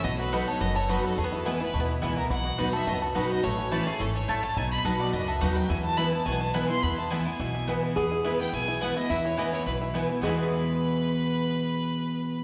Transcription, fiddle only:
\new Staff \with { instrumentName = "Fiddle" } { \time 4/4 \key e \major \tempo 4 = 212 dis''8 b'8 a'8 cis''8 dis''8 cis''8 b'8 a'8 | gis'8 a'8 b'8 b'4 r4 ais'8 | fis''4. e''8 dis''8 fis'8 b'8 dis''8 | cis''4 b'8 gis'8 a'8 cis''8 e''8 a''8 |
gis''8 b''8 r8 d''8 dis''8 e''8 fis''8 g''8 | gis''8 a''8 b''8 a''8 gis''8 a''8 b''8 c'''8 | b''8 a''8 gis''8 gis''2~ gis''16 r16 | r4. g''8 gis''4 fis''8 dis''8 |
e''8 cis''8 dis''8 cis''8 b'8 r4. | b'1~ | b'1 | }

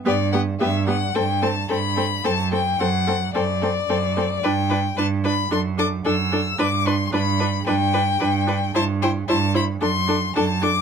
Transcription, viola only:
\new Staff \with { instrumentName = "Viola" } { \time 4/4 \key g \major \tempo 4 = 111 b8 b8 b8 b8 c'8 c'8 c'8 c'8 | c'8 c'8 c'8 c'8 c'8 c'8 c'8 c'8 | d'8 d'8 d'8 d'8 d'8 d'8 d'8 d'8 | d'8 d'8 d'8 d'8 d'8 d'8 d'8 d'8 |
e'8 e'8 e'8 e'8 d'8 d'8 d'8 d'8 | }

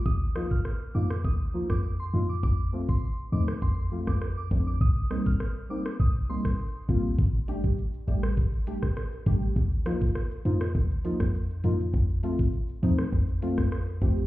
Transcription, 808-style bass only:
\new Staff \with { instrumentName = "808-style bass" } { \clef bass \time 4/4 \key g \minor \tempo 4 = 101 ees,4. f,8 ees,8. f,8. f,8 | f,4. ees,8 f,8. f,8. f,8 | c,4. d,8 c,8. d,8. d,8 | g,,4. a,,8 g,,8. a,,8. a,,8 |
ees,4. f,8 ees,8. f,8. f,8 | f,4. ees,8 f,8. f,8. f,8 | }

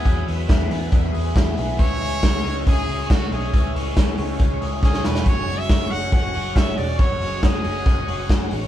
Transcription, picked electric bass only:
\new Staff \with { instrumentName = "Picked electric bass" } { \clef bass \time 4/4 \key cis \phrygian \tempo 4 = 138 e,8 e,8 e,8 e,8 e,8 e,8 e,8 b,,8 | cis,8 cis,8 cis,8 cis,8 cis,8 cis,8 cis,8 b,,8 | cis,8 cis,8 cis,8 cis,8 cis,8 cis,8 cis,8 e,,8 | fis,,8 fis,,8 fis,,8 fis,,8 fis,,8 fis,,8 fis,,8 e,,8 |
fis,,8 fis,,8 fis,,8 fis,,8 fis,,8 fis,,8 fis,,8 a,,8 | }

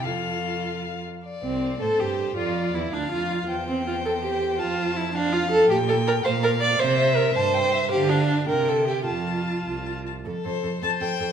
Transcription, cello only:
\new Staff \with { instrumentName = "Cello" } { \clef bass \time 6/8 \key f \major \tempo 4. = 107 f,2~ f,8 r8 | r8 c,4 a,8 g,4 | f,4 e,8 d,8 f,4 | e,2. |
f,2. | bes,4. bes,4. | c4. g,4. | d4. c4. |
f,4. c,4. | f,8 f,8 f,8 f,8 f,8 f,8 | }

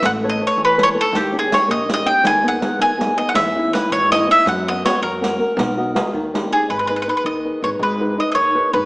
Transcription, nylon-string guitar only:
\new Staff \with { instrumentName = "Nylon-string guitar" } { \time 6/8 \key dis \phrygian \tempo 4. = 108 a8 <a' b' cis''>8 <a' b' cis''>8 e8 <a' b' cis''>8 <a' b' cis''>8 | dis8 <cis' dis' g'>8 <cis' dis' g'>8 ais8 <cis' dis' g'>8 <cis' dis' g'>8 | dis8 <b dis' gis'>8 <b dis' gis'>8 dis8 <b dis' gis'>8 <b dis' gis'>8 | e8 <cis' dis' e'>8 <cis' dis' e'>8 e8 <cis' dis' e'>8 <cis' dis' e'>8 |
fis8 <b cis' fis'>8 <b cis' fis'>8 fis8 <cis' fis' ais'>8 <cis' fis' ais'>8 | b8 <b fis' dis''>8 <fis' b' dis''>8 dis8 <cis' dis' g'>8 <cis' dis' g'>8 | \key gis \minor gis8 <dis' gis' b'>8 <dis' gis' b'>8 dis8 <dis' gis' b'>8 <dis' gis' b'>8 | gis8 <dis' gis' b'>8 <dis' gis' b'>8 dis8 <dis' gis' b'>8 <dis' gis' b'>8 | }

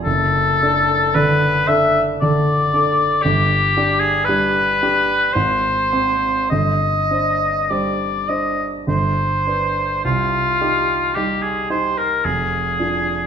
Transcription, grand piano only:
\new Staff \with { instrumentName = "Grand piano" } { \time 3/4 \key g \phrygian \tempo 4 = 55 fis,,8 <d' a'>8 <d d' a'>8 <d' a'>8 <d d' a'>8 <d' a'>8 | g,,8 <d' g'>8 <g d' g'>8 <d' g'>8 aes,,8 <c' c''>8 | g,,8 <d' c''>8 <g d' c''>8 <d' c''>8 g,,8 <d' b'>8 | c,8 <ees' g'>8 <g ees' g'>8 <ees' g'>8 f,,8 <d' f'>8 | }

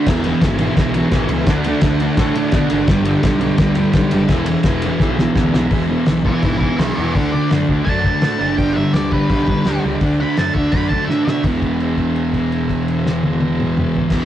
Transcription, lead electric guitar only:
\new Staff \with { instrumentName = "Lead electric guitar" } { \time 4/4 \key d \lydian \tempo 4 = 168 r1 | r1 | r1 | r1 |
r4. <b' e''>8 <b' e''>8 <b' e''>8 <b' d''>8 <b' d''>8 | <a' d''>8 d''8 r4 a''2 | g''8 e''8 d''8 b'2 r8 | r8 b''8 a''8 e''8 b''8 a''8 e''8 e''8 |
r1 | r1 | }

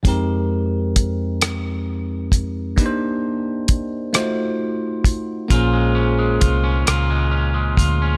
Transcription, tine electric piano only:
\new Staff \with { instrumentName = "Tine electric piano" } { \time 6/8 \key f \minor \tempo 4. = 44 <f, aes c' ees' g' bes'>2. | <bes d' ees' g' b' c''>4. <a ees' f' ges' c''>4. | <bes des' f' aes' c''>2. | }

